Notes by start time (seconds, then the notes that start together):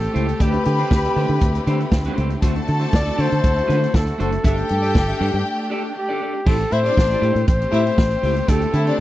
Already playing: A3 C4 G4 A4 G5
0.01 muted clean electric guitar stroke, closed hi-hat
0.13 C#2 A3 E4 G4 C5, closed hi-hat
0.28 muted clean electric guitar stroke, closed hi-hat
0.40 D2 D3 A3 D4 E4 G4 B4 D5 B5, kick, closed hi-hat
0.53 muted clean electric guitar stroke, closed hi-hat
0.65 D3 G4, muted clean electric guitar stroke, closed hi-hat
0.78 A3 D4 G4 C5, closed hi-hat
0.91 D2, muted clean electric guitar stroke, kick, snare
1.05 A3 D4 G4 D5, closed hi-hat
1.16 D3 A3 D4 G4 C5, open hi-hat
1.29 D3, muted clean electric guitar stroke, closed hi-hat
1.41 D2, kick, closed hi-hat
1.55 muted clean electric guitar stroke, closed hi-hat
1.67 D3 A3 D4 G4 C5, closed hi-hat
1.80 muted clean electric guitar stroke, closed hi-hat
1.92 D2, muted clean electric guitar stroke, kick, snare
2.05 A3 D4 G4 C5, closed hi-hat
2.17 C#2 A3 D4 G4 C5, closed hi-hat
2.30 muted clean electric guitar stroke, closed hi-hat
2.42 D2 A3 D4 E4 F#4 A4 C5 A5, kick, closed hi-hat
2.56 muted clean electric guitar stroke, closed hi-hat
2.67 D3, muted clean electric guitar stroke, closed hi-hat
2.80 A3 D4 F#4 C5, closed hi-hat
2.92 D2 D5, muted clean electric guitar stroke, kick, snare
3.04 A3 D4 F#4 D5, closed hi-hat
3.16 D3 A3 D4 F#4 D5, open hi-hat
3.20 C5
3.30 D3, muted clean electric guitar stroke, closed hi-hat
3.43 D2, kick, closed hi-hat
3.56 muted clean electric guitar stroke, closed hi-hat
3.67 D3 A3 D4 F#4 C5, closed hi-hat
3.81 muted clean electric guitar stroke, closed hi-hat
3.93 D2 A4, muted clean electric guitar stroke, kick, snare
4.06 muted clean electric guitar stroke, closed hi-hat
4.18 F#1 A3 D4 F#4 A4 C5, closed hi-hat
4.32 muted clean electric guitar stroke, closed hi-hat
4.44 G1 A3 D4 G4 A4 E5 G5, kick, closed hi-hat
4.57 muted clean electric guitar stroke, closed hi-hat
4.69 G2, muted clean electric guitar stroke, closed hi-hat
4.82 D4 G4 A4 D5, closed hi-hat
4.95 G1, muted clean electric guitar stroke, kick, snare
5.08 D4 G4 A4 E5, closed hi-hat
5.20 G2 D4 G4 A4 D5, open hi-hat
5.34 G2, muted clean electric guitar stroke, closed hi-hat
5.59 muted clean electric guitar stroke
5.70 D4 G4 A4 D5
5.84 muted clean electric guitar stroke
5.96 G4, muted clean electric guitar stroke
6.09 D4 G4 A4 D5
6.21 D4 G4 A4 D5
6.34 muted clean electric guitar stroke
6.46 A1 A3 C4 E4 G4 A4 C5, kick, crash
6.58 muted clean electric guitar stroke, closed hi-hat
6.70 A2 E4 C5 E5, muted clean electric guitar stroke, closed hi-hat
6.84 A3 D4 E4 G4 C5 D5, closed hi-hat
6.96 A1, muted clean electric guitar stroke, kick, snare
7.09 A3 E4 G4 D5, closed hi-hat
7.21 A2 A3 E4 G4 D5, closed hi-hat
7.34 A2, muted clean electric guitar stroke, closed hi-hat
7.47 A1 C5, kick, closed hi-hat
7.60 muted clean electric guitar stroke, closed hi-hat
7.72 A2 A3 E4 G4 C5 E5, closed hi-hat
7.85 muted clean electric guitar stroke, closed hi-hat
7.98 A1, muted clean electric guitar stroke, kick, snare
8.11 muted clean electric guitar stroke, closed hi-hat
8.22 C#2 A3 E4 G4 C5, open hi-hat
8.36 muted clean electric guitar stroke, closed hi-hat
8.47 D2 D3 A3 D4 E4 G4 A4 D5, kick, closed hi-hat
8.61 muted clean electric guitar stroke, closed hi-hat
8.73 D3 E4 E5, muted clean electric guitar stroke, closed hi-hat
8.86 A3 D4 G4 C5 D5, closed hi-hat